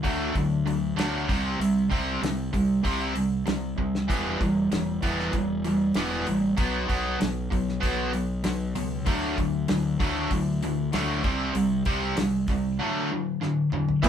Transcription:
0.03 D2 D3 F#3 A3, kick, open hi-hat
0.35 D2 D3 F#3, kick, open hi-hat
0.66 D3 F#3, open hi-hat
0.97 D2 D3 F#3 A3, snare, open hi-hat
1.29 C2 C3 G3 C4, kick, snare, open hi-hat
1.60 C2 C3 G3, open hi-hat
1.90 C2 C3 G3 C4, kick, open hi-hat
2.22 C2 C3 G3, snare, open hi-hat
2.53 C2 C3 G3, kick, open hi-hat
2.83 C2 C3 G3 C4, kick, open hi-hat
3.14 C3 G3, open hi-hat
3.46 C2 C3 G3, snare, open hi-hat
3.78 C2 C3 G3, kick
3.95 snare
4.08 E1 E3 G3 B3, kick, open hi-hat
4.41 E1 E3 G3, kick, open hi-hat
4.72 E1 E3 G3, snare, open hi-hat
5.03 E1 E3 G3 B3, kick, open hi-hat
5.20 snare
5.33 E1 E3 G3, kick, open hi-hat
5.64 E3 G3, open hi-hat
5.94 E1 E3 G3 B3, snare, open hi-hat
6.27 A1 E3 G3, open hi-hat
6.57 B1 B2 F#3 B3, kick, open hi-hat
6.88 B1 B2 F#3 B3, kick, open hi-hat
7.19 B1 B2 F#3, snare, open hi-hat
7.51 B1 B2 F#3, kick, open hi-hat
7.69 snare
7.81 B1 B2 F#3 B3, kick, open hi-hat
8.12 B2 F#3, open hi-hat
8.44 B1 B2 F#3, snare, open hi-hat
8.75 C#2 B2 F#3, open hi-hat
9.05 D2 D3 F#3 A3, kick, open hi-hat
9.37 D2 D3 F#3, kick, open hi-hat
9.68 D2 D3 F#3, snare, open hi-hat
9.99 D2 D3 F#3 A3, kick, open hi-hat
10.31 D2 D3 F#3, kick, open hi-hat
10.63 D3 F#3, open hi-hat
10.92 D2 D3 F#3 A3, snare, open hi-hat
11.24 C2 C3 G3 C4, kick, open hi-hat
11.54 C2 C3 G3, open hi-hat
11.85 C2 C3 G3 C4, kick, open hi-hat
12.16 C2 C3 G3, snare, open hi-hat
12.48 C2 C3 G3, kick, open hi-hat
12.79 D3 F#3 A3
13.12 D3 F#3
13.42 D3 F#3, snare
13.72 D3 F#3, mid tom
13.89 floor tom
14.02 E1 E2 B2 E3 G3 B3 E4 G4 E5, kick, crash

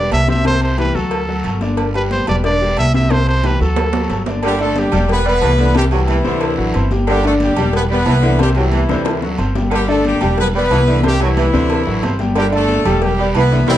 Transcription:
Already playing: G3 G4 B4
0.11 C2 E5, cowbell, high conga, low timbale, low agogo, short guiro
0.28 C3 C4 C5 E5, cowbell, high conga, short guiro
0.45 C3 C4 C5, cowbell, high conga, low agogo, long guiro
0.61 C5, low agogo
0.78 E3 E4 G4 B4, cowbell, high conga, low agogo, short guiro
0.95 D2 F#3 F#4 A4, high conga, short guiro
1.11 cowbell, high conga, low agogo, long guiro
1.28 F#3 F#4 A4, high conga
1.44 G1, cowbell, high conga, low agogo, short guiro
1.61 D3 D4 D5, cowbell, high conga, short guiro
1.77 cowbell, high conga, low agogo, long guiro
1.94 G3 G4 B4, high conga, low agogo
2.11 C5, cowbell, high conga, short guiro
2.27 E1 G3 G4 B4 D5, cowbell, high conga, low conga, low agogo, short guiro
2.44 D3 D4 D5, cowbell, high conga, low agogo, long guiro
2.61 G3 G4 B4, high conga
2.77 C2 E5, cowbell, high conga, low agogo, short guiro
2.94 C3 C4 C5 E5, cowbell, high conga, short guiro
3.10 C3 C4 C5, cowbell, high conga, low agogo, long guiro
3.27 C5, high conga, low agogo
3.43 E3 E4 G4 B4, cowbell, high conga, high timbale, low agogo, short guiro
3.60 D2 F#3 F#4 A4, high conga, short guiro
3.76 cowbell, high conga, low timbale, low agogo, long guiro
3.93 F#3 F#4 A4, low timbale
4.09 G1, cowbell, high conga, low timbale, low agogo, short guiro
4.26 D3 D4 D5, cowbell, high conga, low timbale, short guiro
4.43 D3 G3 G4, cowbell, low agogo, long guiro
4.59 D3 A3 D4 A4 D5, low agogo
4.76 G3 G4, cowbell, high conga, short guiro
4.92 E1 G3 G4 G5, cowbell, high conga, low conga, low agogo, short guiro
5.09 B3 B4, cowbell, high conga, low agogo, long guiro
5.25 G3 B3 B4 B5, high conga
5.42 C2 E3, cowbell, high conga, low timbale, low agogo, short guiro
5.58 D3 E3 E4 E5, cowbell, high conga, short guiro
5.75 C3 G3 C4 G4 C5, cowbell, high conga, low agogo, long guiro
5.91 E3 F#3 G3 E4 G4 G5, high conga, low agogo
6.08 E3, cowbell, high conga, low agogo, short guiro
6.24 D2 C3 D3 C4 C5, high conga, short guiro
6.40 cowbell, high conga, low agogo, long guiro
6.57 A1 F#3 F#4 F#5, high conga
6.74 G1 C4 C5 C6, cowbell, high conga, low agogo, short guiro
6.91 G3 G4 G5, cowbell, high conga, short guiro
7.07 D3 G3 G4, cowbell, high conga, low agogo, long guiro
7.24 D3 A3 D4 A4 D5, low agogo
7.40 G3 G4, cowbell, high conga, short guiro
7.56 E1 G3 G4 G5, cowbell, high conga, low conga, low agogo, short guiro
7.73 B3 B4, cowbell, high conga, low agogo, long guiro
7.90 G3 B3 B4 B5, high conga
8.06 C2 E3, cowbell, high conga, low timbale, low agogo, short guiro
8.22 D3 E3 E4 E5, cowbell, high conga, short guiro
8.39 C3 G3 C4 G4 C5, cowbell, low agogo, long guiro
8.55 E3 F#3 G3 E4 G4 G5, high conga, low agogo
8.72 E3, cowbell, high conga, low agogo, short guiro
8.89 C3 D3 C4 C5, high bongo, short guiro
9.05 cowbell, high bongo, high conga, low agogo, long guiro
9.22 F#3 F#4 F#5, low bongo, high conga
9.38 G1 C4 C5 C6, cowbell, high conga, low agogo, short guiro
9.55 G3 G4 G5, cowbell, low bongo, high conga, short guiro
9.71 D3 G3 G4, cowbell, high conga, low agogo, long guiro
9.88 D3 A3 D4 A4 D5, high conga, low agogo
10.04 G3 G4, cowbell, high conga, short guiro
10.21 E1 G3 G4 G5, cowbell, high conga, low conga, low agogo, short guiro
10.38 B3 B4, cowbell, high conga, low conga, low agogo, long guiro
10.55 G3 B3 B4 B5, high conga
10.71 C2 E3, cowbell, high conga, low timbale, low agogo, short guiro
10.87 D3 E3 E4 E5, cowbell, high conga, short guiro
11.03 C3 G3 C4 G4 C5, cowbell, high conga, low agogo, long guiro
11.20 E3 F#3 G3 E4 G4 G5, low agogo
11.37 E3, cowbell, high conga, low agogo, short guiro
11.53 D2 C3 D3 C4 C5, short guiro
11.70 cowbell, high conga, low agogo, long guiro
11.86 A1 F#3 F#4 F#5, high conga
12.03 G1 C4 C5 C6, cowbell, high conga, low timbale, low agogo, short guiro
12.19 G3 G4 G5, cowbell, high conga, short guiro
12.35 D3 G3 G4, cowbell, high conga, low agogo, long guiro
12.52 D3 A3 D4 A4 D5, low agogo
12.68 cowbell, high conga, short guiro
12.85 E1 G3 G4 G5, cowbell, high conga, low conga, low agogo, short guiro
13.02 G3 G4, cowbell, high conga, low conga, low agogo, long guiro
13.18 G3 B3 B4 B5, high conga
13.35 C2 E3 B3 B4, cowbell, high conga, low agogo, short guiro
13.50 D3 E3 E4 E5, cowbell, high conga, short guiro
13.67 C2 C3 E3 G3 C4 E4 G4 C5, cowbell, high conga, high timbale, long guiro

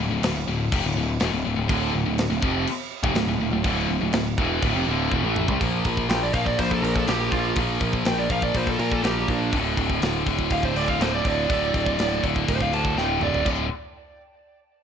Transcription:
0.10 D1 D2 A2
0.22 D1 D2 A2, snare, crash
0.47 D1 D2 A2
0.72 F1 F2 C3, kick, crash
0.84 D1 D2 A2
0.96 D1 D2 A2
1.20 E1 E2 B2, snare, crash
1.32 D1 D2 A2
1.45 D1 D2 A2
1.56 D1 D2 A2
1.68 D1 D2 A2 D3, kick, crash
1.93 D1 D2 A2
2.06 D1 D2 A2
2.18 snare, crash
2.30 D1 D2 A2
2.41 F1 F2 C3 F3, kick
2.67 crash
3.03 F1 F2 C3, kick
3.15 D1 D2 A2, snare, crash
3.27 D1 D2 A2
3.39 D1 D2 A2
3.51 D1 D2 A2
3.64 D1 D2 A2 D3, kick, crash
3.88 D1 D2 A2
4.01 D1 D2 A2
4.13 D1 D2 A2, snare, crash
4.38 E1 E2 B2 E3, kick
4.62 D1 D2 A2, kick, crash
4.75 F1 F2 C3
4.87 D1 D2 A2 D3
5.12 E1 E2 B2, kick
5.23 A1 A2 E3 A3
5.36 mid tom
5.48 C2 C3 G3, kick
5.61 A#1 A#2 F3 A#3, kick, open hi-hat
5.85 A#1, kick, open hi-hat
5.97 kick
6.09 A#1 G5, snare, open hi-hat
6.23 D5
6.33 A#1 A#2 F3 A#3 F5, kick, open hi-hat
6.46 D5, kick
6.59 A#1 C5, kick, open hi-hat
6.71 A4, kick
6.82 A#1 A#2 F3 A#3 A#4, open hi-hat
6.96 A4, kick
7.07 A#1 A#2 F3 A#3 G4, snare, open hi-hat
7.31 A#1 F4, kick, open hi-hat
7.56 A#1 A#2 F3 A#3, kick, open hi-hat
7.81 A#1, kick, open hi-hat
7.93 kick
8.05 A#1 G5, snare, open hi-hat
8.19 D5
8.29 A#1 A#2 F3 A#3 F5, kick, open hi-hat
8.42 D5, kick
8.54 A#1 C5, kick, open hi-hat
8.67 A4, kick
8.78 A#2 F3 A#3 A#4, open hi-hat
8.92 A4, kick
9.03 A#1 A#2 F3 A#3 G4, snare, open hi-hat
9.28 A#1 D4, kick, open hi-hat
9.53 D1 D2 A2 D3, kick, open hi-hat
9.77 D1, kick, open hi-hat
9.90 kick
10.02 D1, snare, open hi-hat
10.26 D1 D2 A2 D3, kick, open hi-hat
10.39 kick
10.50 D1 F5, kick, open hi-hat
10.63 C5, kick
10.75 D1 D2 A2 D3 D5, open hi-hat
10.88 F5, kick
10.99 D1 D2 A2 D3 C5, snare, open hi-hat
11.14 D5
11.25 D1 D5, kick, open hi-hat
11.48 D1 D2 A2 D3, kick, open hi-hat
11.74 D1, kick, open hi-hat
11.86 kick
11.98 D1, snare, open hi-hat
12.22 D1 D2 A2 D3, kick, open hi-hat
12.36 kick
12.48 D1 C5, kick, open hi-hat
12.61 F5, kick
12.71 D2 A2 D3 A5, open hi-hat
12.85 kick
12.95 D1 D2 A2 D3 G5, snare
13.20 D1 D5, mid tom
13.34 floor tom
13.44 D1 D2 A2 D3, kick, crash

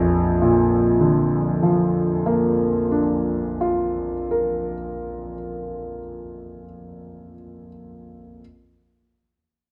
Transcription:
Already playing: A#1 F2 A#6
0.42 A#2
1.00 D3
1.63 F3
2.26 A#3
2.91 D4
3.61 F4
4.31 A#4

